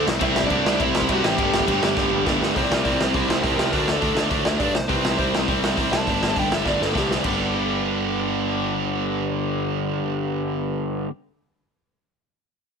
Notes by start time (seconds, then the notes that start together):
0.06 C2 C3 G3 C4, snare
0.20 C2 C3 G3 C4 E4 E5, kick, crash
0.35 C2, snare
0.43 D4 D5, kick
0.50 C2 C3 G3 C4 E4, kick, crash
0.65 C2, snare
0.79 C2 C3 G3 C4 E4 E5, kick, crash
0.95 C2 E4 E5, snare
1.02 kick
1.09 C2 C3 G3 C4 E4 F#4 F#5, kick, crash
1.24 A1 G4 G5, snare
1.38 G1 G2 D3 G3 B3 D4, kick, crash
1.54 G1, snare
1.60 kick
1.67 G1 G2 D3 G3 B3 D4, kick, crash
1.83 G1, snare
1.96 G1 G2 D3 G3 B3 D4, kick, snare
2.13 G1
2.26 G1 G2 D3 G3 B3 D4, kick, snare
2.41 G2, snare
2.55 C2 C3 G3 C4 E4 A#4 D5, kick, open hi-hat
2.71 C2 A#4 D5, snare
2.84 C2 C3 G3 C4 E4 A#4 D5, kick, open hi-hat
2.99 C2 E4 C5, snare
3.14 C2 C3 G3 C4 E4 C5, kick, open hi-hat
3.28 C2 E4 C5, snare
3.43 C2 C3 G3 C4 E4 G4 A#4, kick, open hi-hat
3.58 C2 G4 A#4, snare
3.71 D2 D3 F#3 A3 D4 F#4 A#4, kick, open hi-hat
3.88 A4, snare
4.01 D2 D3 F#3 A3 D4, kick, open hi-hat
4.15 D2, snare
4.31 D2 D3 F#3 A3 D4, kick, open hi-hat
4.45 D2 E5, snare
4.59 G2 D3 F#3 A3 D4 D5, kick, open hi-hat
4.74 C2 C5, snare
4.88 C2 C3 G3 C4 E4 B4, kick, open hi-hat
5.05 C2, snare
5.18 C2 C3 G3 C4 E4 C5, kick, open hi-hat
5.34 C2, snare
5.48 C2 C3 G3 C4 E4, kick, open hi-hat
5.63 C2, snare
5.77 C2 C3 G3 C4 E4, kick, open hi-hat
5.92 C2 A5, snare
6.07 G1 G2 D3 G3 B3 D4, kick, open hi-hat
6.23 snare
6.35 G1 G2 D3 G3 B3 D4 G5, kick, open hi-hat
6.51 G1 E5, snare
6.64 G1 G2 D3 G3 B3 D4, kick, snare
6.68 D5
6.81 G1 A4, snare
6.93 C2 G2 D3 G3 B3 D4, kick, snare
6.98 G4
7.11 snare
7.22 G1 G2 D3 G3 B3, kick, crash
7.27 D4